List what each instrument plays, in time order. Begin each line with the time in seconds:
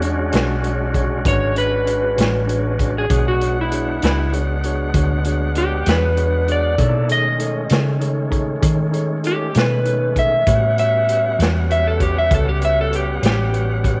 Already playing: fingered electric bass E2, tonewheel organ G#3 C#4 D4 F#4
0.00 tine electric piano D4 F#4 G#4 C#5, closed hi-hat
0.31 fingered electric bass B1, tine electric piano D4 F#4 G#4 C#5, snare, closed hi-hat
0.61 tine electric piano D4 F#4 G#4 C#5, closed hi-hat
0.92 tine electric piano D4 F#4 G#4 C#5, kick, closed hi-hat
1.24 fingered electric bass G#1, tine electric piano D4 F#4 G#4 B4, electric slide guitar C#5, kick, closed hi-hat
1.55 tine electric piano D4 F#4 G#4 C#5, electric slide guitar B4, closed hi-hat
1.86 tine electric piano D4 F#4 G#4 C#5, closed hi-hat
2.16 fingered electric bass A1, tine electric piano D4 F#4 G#4 C#5, closed hi-hat
2.21 snare
2.47 tine electric piano D4 F#4 G#4 C#5, closed hi-hat
2.79 tine electric piano D4 F#4 G#4 C#5, kick, closed hi-hat
2.98 electric slide guitar G#4
3.10 fingered electric bass B1, tonewheel organ G#3 B3 D4 F#5, tine electric piano D4 F#4 G#4 C#5, kick, closed hi-hat
3.28 electric slide guitar F#4
3.40 tine electric piano D4 F#4 G#4 C#5, closed hi-hat
3.61 electric slide guitar E4
3.71 tine electric piano D4 F#4 G#4 C#5, closed hi-hat
4.02 fingered electric bass C#2, tine electric piano D4 F#4 G#4 D5, electric slide guitar E4, snare, closed hi-hat
4.32 tine electric piano D4 F#4 G#4 C#5, closed hi-hat
4.64 tine electric piano D4 F#4 G#4 C#5, closed hi-hat
4.94 fingered electric bass D2, tine electric piano D4 F#4 G#4 C#5, kick, closed hi-hat
5.25 tine electric piano D4 F#4 G#4 C#5, closed hi-hat
5.55 tine electric piano D4 F#4 G#4 C#5, electric slide guitar G4, closed hi-hat
5.86 fingered electric bass E2, tine electric piano D4 F#4 G#4 C#5, electric slide guitar B4, snare, closed hi-hat
6.16 tine electric piano D4 F#4 G#4 C#5, closed hi-hat
6.48 tine electric piano D4 F#4 G#4 C#5, closed hi-hat
6.52 electric slide guitar D5
6.78 fingered electric bass B2, tonewheel organ A#3 D4 E4 A4, tine electric piano D#4 G#4 A4 C#5, kick, closed hi-hat
7.08 tonewheel organ D#3 G#3 A3 C#4, tine electric piano D#4 G#4 A4 C#5, closed hi-hat
7.12 electric slide guitar D#5
7.38 tine electric piano D#4 G#4 A4 C#5, closed hi-hat
7.70 fingered electric bass C#3, tine electric piano D#4 G#4 A4 C#5, snare, closed hi-hat
8.00 tine electric piano D#4 G#4 A4 C#5, closed hi-hat
8.30 tine electric piano D#4 G#4 A4 C#5, kick, closed hi-hat
8.62 fingered electric bass D#3, tine electric piano D#4 G#4 A4 C#5, kick, closed hi-hat
8.92 tine electric piano D#4 G#4 A4 C#5, closed hi-hat
9.23 tine electric piano D#4 G#4 A4 C#5, electric slide guitar G4, closed hi-hat
9.55 fingered electric bass B2, tine electric piano D#4 G#4 A4 C#5, electric slide guitar B4, snare, closed hi-hat
9.85 tine electric piano D#4 G#4 A4 C#5, closed hi-hat
10.16 tine electric piano D#4 G#4 A4 D#5, electric slide guitar E5, kick, closed hi-hat
10.47 fingered electric bass A2, tonewheel organ G3 B3 C#4 F#5, tine electric piano F#4 G4 B4 C#5, kick, closed hi-hat
10.78 tine electric piano F#4 G4 B4 C#5, electric slide guitar E5, closed hi-hat
11.08 tine electric piano F#4 G4 B4 C#5, closed hi-hat
11.38 fingered electric bass E2, tine electric piano F#4 G4 B4 C#5, closed hi-hat
11.42 snare
11.69 tine electric piano F#4 G4 B4 C#5, electric slide guitar E5, closed hi-hat
11.87 electric slide guitar A4
12.00 tine electric piano F#4 G4 B4 C#5, electric slide guitar G4, kick, closed hi-hat
12.18 electric slide guitar E5
12.30 fingered electric bass C#2, tine electric piano F#4 G4 B4 C#5, kick, closed hi-hat
12.35 electric slide guitar A4
12.49 electric slide guitar G4
12.60 tine electric piano F#4 G4 B4 C#5, closed hi-hat
12.65 electric slide guitar E5
12.81 electric slide guitar A4
12.90 tine electric piano F#4 G4 B4 C#5, closed hi-hat
12.96 electric slide guitar G4
13.21 fingered electric bass A1, tine electric piano F#4 G4 B4 C#5, closed hi-hat
13.26 electric slide guitar G4, snare
13.52 tine electric piano F#4 G4 B4 C#5, closed hi-hat
13.82 tine electric piano F#4 G4 B4 C#5, kick, closed hi-hat